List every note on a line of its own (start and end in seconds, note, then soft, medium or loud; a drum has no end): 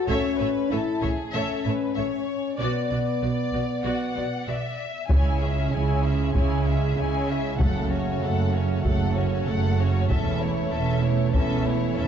0.08 0.16 A1 medium
0.08 0.17 A2 medium
0.08 0.71 C#4 medium
0.08 0.38 A4 medium
0.08 0.40 C#5 medium
0.08 0.38 C#5 medium
0.08 0.38 E5 soft
0.08 taiko medium
0.39 0.48 A1 soft
0.39 0.48 A2 soft
0.39 0.49 A4 soft
0.39 0.71 B4 soft
0.39 0.49 C#5 soft
0.39 0.48 E5 soft
0.71 0.79 A1 soft
0.71 0.80 A2 soft
0.71 1.17 E4 medium
0.71 0.79 A4 soft
0.71 1.04 A4 soft
0.71 0.79 C#5 soft
0.71 0.79 E5 soft
1.01 1.09 A1 soft
1.01 1.11 A2 soft
1.01 1.11 A3 soft
1.01 1.34 G#4 soft
1.01 1.10 C#5 soft
1.01 1.10 E5 soft
1.01 taiko soft
1.32 1.41 A1 medium
1.32 1.43 A2 medium
1.32 2.57 C#4 medium
1.32 1.63 A4 soft
1.32 1.66 A4 soft
1.32 1.63 C#5 soft
1.32 1.62 E5 medium
1.63 1.74 A1 soft
1.63 1.74 A2 soft
1.63 1.74 A4 soft
1.63 1.98 B4 soft
1.63 1.74 C#5 soft
1.63 1.71 E5 soft
1.95 2.06 A1 soft
1.95 2.05 A2 soft
1.95 2.06 A4 soft
1.95 2.58 C#5 soft
1.95 2.06 C#5 soft
1.95 2.03 E5 soft
2.59 2.68 B1 soft
2.59 2.67 B2 soft
2.59 4.43 B3 soft
2.59 2.89 F#4 soft
2.59 2.88 D5 soft
2.59 4.75 D5 soft
2.89 2.99 B1 soft
2.89 2.98 B2 soft
2.89 2.99 F#4 soft
2.89 2.97 D5 soft
2.89 2.98 D5 soft
3.21 3.30 B1 soft
3.21 3.30 B2 soft
3.21 3.30 F#4 soft
3.21 3.80 D5 soft
3.21 3.30 D5 soft
3.52 3.60 B1 soft
3.52 3.62 B2 soft
3.52 3.61 F#4 soft
3.52 3.62 D5 soft
3.84 3.92 B1 soft
3.84 3.93 B2 soft
3.84 4.13 F#4 soft
3.84 4.13 D5 soft
3.84 4.45 F#5 soft
4.16 4.24 B1 soft
4.16 4.24 B2 soft
4.16 4.24 F#4 soft
4.16 4.24 D5 soft
4.46 4.55 B1 soft
4.46 4.55 B2 soft
4.46 4.56 F#4 soft
4.46 4.56 D5 soft
4.46 5.09 E5 soft
5.08 5.65 C#2 medium
5.08 10.05 C#3 medium
5.08 5.65 C#3 soft
5.08 7.55 G#3 soft
5.08 10.06 C#4 soft
5.08 5.39 E4 soft
5.08 7.57 E4 soft
5.08 5.39 C#5 soft
5.08 5.38 G#5 soft
5.08 taiko medium
5.41 5.73 C#4 soft
5.41 5.72 G#4 soft
5.41 5.73 E5 soft
5.71 6.28 C#2 soft
5.71 6.28 C#3 medium
5.71 6.04 E4 soft
5.71 6.04 C#5 soft
5.71 6.03 G#5 soft
6.04 6.35 C#4 soft
6.04 6.35 G#4 soft
6.04 6.35 E5 soft
6.34 6.90 C#2 medium
6.34 6.90 C#3 medium
6.34 6.64 E4 soft
6.34 6.64 C#5 soft
6.34 6.63 G#5 soft
6.34 taiko medium
6.66 6.97 C#4 soft
6.66 6.98 G#4 soft
6.66 6.97 E5 soft
6.97 7.52 C#2 soft
6.97 7.52 C#3 medium
6.97 7.28 E4 soft
6.97 7.28 C#5 soft
6.97 7.29 G#5 soft
7.28 7.60 C#4 soft
7.28 7.60 G#4 soft
7.28 7.60 E5 soft
7.59 8.15 F#1 medium
7.59 8.15 F#2 medium
7.59 7.89 A3 soft
7.59 12.08 A3 medium
7.59 10.10 F#4 soft
7.59 7.89 A4 soft
7.59 7.88 F#5 soft
7.59 taiko medium
7.91 8.22 C#4 soft
7.91 8.22 F#4 soft
7.91 8.23 C#5 soft
8.22 8.78 F#1 medium
8.22 8.78 F#2 medium
8.22 8.54 A3 soft
8.22 8.54 A4 soft
8.22 8.54 F#5 soft
8.52 8.85 C#4 soft
8.52 8.84 F#4 soft
8.52 8.85 C#5 soft
8.85 9.40 F#1 medium
8.85 9.40 F#2 medium
8.85 9.14 A3 soft
8.85 9.15 A4 soft
8.85 9.14 F#5 soft
8.85 taiko medium
9.16 9.47 C#4 soft
9.16 9.48 F#4 soft
9.16 9.48 C#5 soft
9.47 10.03 F#1 medium
9.47 10.02 F#2 medium
9.47 9.79 A3 soft
9.47 9.79 A4 soft
9.47 9.78 F#5 soft
9.78 10.09 C#4 soft
9.78 10.10 F#4 soft
9.78 10.11 C#5 soft
10.09 10.65 E1 medium
10.09 10.65 E2 medium
10.09 12.08 E3 medium
10.09 12.08 C#4 medium
10.09 10.39 C#4 soft
10.09 12.08 E4 medium
10.09 10.39 A4 soft
10.09 10.39 E5 soft
10.09 taiko medium
10.39 10.72 A3 soft
10.39 10.71 E4 soft
10.39 10.73 C#5 soft
10.72 11.28 E1 medium
10.72 11.28 E2 medium
10.72 11.03 C#4 soft
10.72 11.03 A4 soft
10.72 11.04 E5 soft
11.02 11.34 A3 soft
11.02 11.34 E4 soft
11.02 11.35 C#5 soft
11.32 11.91 E1 medium
11.32 11.90 E2 medium
11.32 11.64 C#4 soft
11.32 11.63 A4 soft
11.32 11.64 E5 soft
11.32 taiko medium
11.65 11.97 A3 soft
11.65 11.97 E4 soft
11.65 11.97 C#5 soft
11.97 12.08 E1 medium
11.97 12.08 E2 medium
11.97 12.08 C#4 medium
11.97 12.08 A4 soft
11.97 12.08 E5 medium